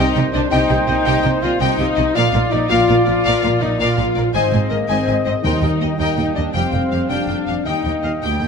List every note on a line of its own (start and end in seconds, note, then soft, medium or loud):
0.00 2.16 A#2 medium
0.00 2.12 G3 medium
0.00 0.31 D#4 loud
0.00 0.32 D#4 medium
0.00 0.14 G4 medium
0.00 2.11 C5 medium
0.00 0.14 D#5 medium
0.00 0.27 D#5 medium
0.00 0.31 D#5 medium
0.00 0.13 G5 medium
0.14 0.23 C2 medium
0.14 0.24 C3 medium
0.14 0.23 G4 medium
0.14 0.23 D#5 medium
0.14 0.22 G5 medium
0.33 0.41 C2 medium
0.33 0.42 C3 medium
0.33 0.51 D4 loud
0.33 0.51 D4 medium
0.33 0.41 G4 medium
0.33 0.41 D5 medium
0.33 0.42 D5 medium
0.33 0.40 D#5 medium
0.50 0.59 C2 medium
0.50 0.59 C3 medium
0.50 0.86 D#4 loud
0.50 0.87 D#4 medium
0.50 0.68 G4 medium
0.50 0.68 D#5 medium
0.50 0.87 D#5 medium
0.50 0.68 G5 medium
0.50 1.07 G5 medium
0.69 0.77 C2 medium
0.69 0.77 C3 medium
0.69 0.77 G4 medium
0.69 0.77 D#5 medium
0.69 0.76 G5 medium
0.87 0.95 C2 medium
0.87 0.95 C3 medium
0.87 1.42 D#4 medium
0.87 1.42 D#4 loud
0.87 0.95 G4 medium
0.87 0.95 D5 medium
0.87 0.94 D#5 medium
0.87 1.44 D#5 medium
1.05 1.13 C2 medium
1.05 1.13 C3 medium
1.05 1.23 G4 medium
1.05 1.26 D#5 medium
1.05 1.23 D#5 medium
1.05 1.21 G5 medium
1.22 1.31 C2 medium
1.22 1.32 C3 medium
1.22 1.31 G4 medium
1.22 1.42 C5 medium
1.22 1.31 D#5 medium
1.22 1.30 G5 medium
1.42 1.49 C2 medium
1.42 1.50 C3 medium
1.42 1.60 F4 medium
1.42 1.50 G4 medium
1.42 1.50 D5 medium
1.42 1.61 D5 medium
1.42 1.50 D#5 medium
1.42 1.60 F5 medium
1.59 1.67 C2 medium
1.59 1.68 C3 medium
1.59 2.14 D#4 medium
1.59 2.15 D#4 medium
1.59 1.78 G4 medium
1.59 2.14 D#5 medium
1.59 1.67 D#5 medium
1.59 1.78 D#5 medium
1.59 1.77 G5 medium
1.78 1.86 C2 medium
1.78 1.86 C3 medium
1.78 1.87 G4 medium
1.78 1.87 D#5 medium
1.78 1.98 F5 medium
1.78 1.85 G5 medium
1.96 2.05 C2 medium
1.96 2.04 C3 medium
1.96 2.04 G4 medium
1.96 2.04 D5 medium
1.96 2.03 D#5 medium
1.96 2.16 D#5 medium
2.14 2.23 A#1 medium
2.14 2.23 A#2 medium
2.14 4.31 F3 medium
2.14 4.31 A#3 medium
2.14 2.51 F4 loud
2.14 2.52 F4 medium
2.14 2.32 A#4 medium
2.14 2.31 D5 medium
2.14 2.70 D5 medium
2.14 4.03 D5 medium
2.14 2.53 F5 medium
2.14 2.31 F5 medium
2.32 2.41 A#1 medium
2.32 2.41 A#2 medium
2.32 2.40 A#4 medium
2.32 2.40 D5 medium
2.32 2.40 F5 soft
2.50 2.60 A#1 medium
2.50 2.60 A#2 medium
2.50 2.70 D#4 loud
2.50 2.70 D#4 medium
2.50 2.59 A#4 medium
2.50 2.58 D5 medium
2.50 2.70 D#5 medium
2.69 2.78 A#1 medium
2.69 2.78 A#2 medium
2.69 3.05 F4 loud
2.69 3.06 F4 medium
2.69 2.87 A#4 medium
2.69 2.88 D5 medium
2.69 2.86 F5 medium
2.69 3.24 F5 medium
2.69 3.06 F5 medium
2.88 2.96 A#1 medium
2.88 2.97 A#2 medium
2.88 2.96 A#4 medium
2.88 2.96 D5 medium
2.88 2.95 F5 medium
3.06 3.15 A#1 soft
3.06 3.14 A#2 medium
3.06 3.60 F4 loud
3.06 3.61 F4 medium
3.06 3.14 A#4 medium
3.06 3.13 D5 medium
3.06 3.61 F5 medium
3.24 3.33 A#1 medium
3.24 3.33 A#2 medium
3.24 3.42 A#4 medium
3.24 3.42 D5 medium
3.24 4.05 D5 medium
3.24 3.41 F5 medium
3.42 3.51 A#1 medium
3.42 3.51 A#2 medium
3.42 3.51 A#4 medium
3.42 3.51 D5 soft
3.42 3.50 F5 medium
3.60 3.70 A#1 medium
3.60 3.69 A#2 soft
3.60 3.80 D#4 medium
3.60 3.69 A#4 medium
3.60 3.68 D5 medium
3.60 3.71 D#5 medium
3.79 3.87 A#1 medium
3.79 3.87 A#2 medium
3.79 4.34 F4 medium
3.79 4.35 F4 medium
3.79 3.97 A#4 medium
3.79 3.97 D5 medium
3.79 3.95 F5 medium
3.79 4.34 F5 medium
3.97 4.05 A#1 medium
3.97 4.05 A#2 medium
3.97 4.05 A#4 medium
3.97 4.05 D5 medium
3.97 4.04 F5 medium
4.15 4.24 A#1 medium
4.15 4.23 A#2 medium
4.15 4.25 A#4 medium
4.15 4.23 D5 medium
4.32 4.42 G#1 medium
4.32 4.41 G#2 medium
4.32 5.42 D#3 medium
4.32 5.42 G#3 medium
4.32 4.69 C4 medium
4.32 4.71 C4 medium
4.32 4.51 C5 medium
4.32 4.70 C5 medium
4.32 6.50 D#5 medium
4.32 4.51 D#5 medium
4.32 5.41 D#5 medium
4.32 4.51 G#5 medium
4.53 4.60 G#1 medium
4.53 4.60 G#2 soft
4.53 4.60 C5 soft
4.53 4.60 D#5 soft
4.53 4.60 G#5 soft
4.70 4.78 G#1 soft
4.70 4.78 G#2 medium
4.70 4.90 A#3 medium
4.70 4.79 A#4 medium
4.70 4.78 C5 medium
4.70 4.78 D#5 soft
4.88 4.97 G#1 medium
4.88 4.96 G#2 medium
4.88 5.24 C4 medium
4.88 5.25 C4 medium
4.88 5.06 C5 medium
4.88 5.24 C5 medium
4.88 5.06 D#5 medium
4.88 5.06 G#5 medium
5.07 5.15 G#1 soft
5.07 5.15 G#2 medium
5.07 5.16 C5 soft
5.07 5.15 D#5 soft
5.07 5.14 G#5 soft
5.25 5.33 G#1 soft
5.25 5.33 G#2 soft
5.25 5.33 C4 medium
5.25 5.44 C4 medium
5.25 5.33 C5 medium
5.25 5.34 C5 medium
5.25 5.33 D#5 soft
5.43 5.51 D#2 medium
5.43 5.52 D#2 medium
5.43 5.95 D#3 medium
5.43 8.48 G3 medium
5.43 6.53 A#3 medium
5.43 5.96 D#4 medium
5.43 5.97 D#4 medium
5.43 5.62 A#4 medium
5.43 5.65 C5 medium
5.43 5.98 D#5 medium
5.43 5.62 D#5 medium
5.43 5.61 G5 medium
5.62 5.69 D#2 soft
5.62 5.80 A#4 medium
5.62 5.71 A#4 soft
5.62 5.71 D#5 medium
5.62 5.70 G5 medium
5.80 5.88 D#2 soft
5.80 5.89 D#2 soft
5.80 5.89 A#4 medium
5.80 5.88 D#5 soft
5.80 6.53 G5 medium
5.97 6.06 D#2 medium
5.97 6.07 D#2 medium
5.97 6.34 D#4 medium
5.97 6.35 D#4 medium
5.97 6.17 A#4 medium
5.97 6.35 D#5 medium
5.97 6.16 D#5 medium
5.97 6.16 G5 medium
6.17 6.24 D#2 soft
6.17 6.25 D#2 soft
6.17 6.25 A#4 soft
6.17 6.25 D#5 soft
6.17 6.25 G5 soft
6.35 6.43 D#2 soft
6.35 6.44 D#2 soft
6.35 6.43 D4 medium
6.35 6.54 D4 medium
6.35 6.44 A#4 soft
6.35 6.44 D5 medium
6.35 6.43 D#5 soft
6.53 6.62 F1 medium
6.53 6.61 F2 medium
6.53 7.08 C4 medium
6.53 7.10 C4 medium
6.53 7.66 C4 soft
6.53 6.72 G4 medium
6.53 6.90 C5 medium
6.53 7.09 F5 medium
6.53 7.68 F5 medium
6.53 6.70 G5 medium
6.53 6.72 G5 medium
6.72 6.80 F1 soft
6.72 6.80 F2 soft
6.72 6.81 G4 soft
6.72 6.79 G5 soft
6.72 6.81 G5 soft
6.91 6.99 F1 soft
6.91 6.98 F2 soft
6.91 7.00 G4 soft
6.91 6.99 F5 soft
6.91 7.00 F5 soft
7.09 7.18 F1 medium
7.09 7.17 F2 medium
7.09 7.66 D4 medium
7.09 7.28 G4 medium
7.09 7.62 D5 medium
7.09 7.65 F5 medium
7.09 7.27 G5 medium
7.09 7.28 G5 medium
7.28 7.36 F1 soft
7.28 7.36 F2 soft
7.28 7.37 G4 soft
7.28 7.36 G5 soft
7.28 7.37 G5 soft
7.47 7.55 F1 soft
7.47 7.55 F2 soft
7.47 7.56 G4 soft
7.47 7.55 F5 soft
7.47 7.56 F5 soft
7.65 7.73 D#2 medium
7.65 7.74 D#2 medium
7.65 8.48 A#3 soft
7.65 8.21 D#4 medium
7.65 8.22 D#4 medium
7.65 7.84 G4 soft
7.65 8.21 D#5 medium
7.65 8.48 D#5 soft
7.65 7.83 G5 soft
7.65 8.48 G5 medium
7.65 7.84 G5 medium
7.85 7.92 D#2 soft
7.85 7.93 G4 soft
7.85 7.92 G5 soft
7.85 7.93 G5 soft
8.03 8.11 D#2 soft
8.03 8.12 G4 soft
8.03 8.11 D#5 soft
8.03 8.12 D#5 soft
8.03 8.12 F5 medium
8.22 8.40 D2 medium
8.22 8.30 D#2 soft
8.22 8.40 G4 medium
8.22 8.39 G5 medium
8.22 8.40 G5 medium
8.22 8.48 G5 medium
8.40 8.47 D#2 soft
8.40 8.48 D#2 soft
8.40 8.48 G4 soft
8.40 8.48 G5 soft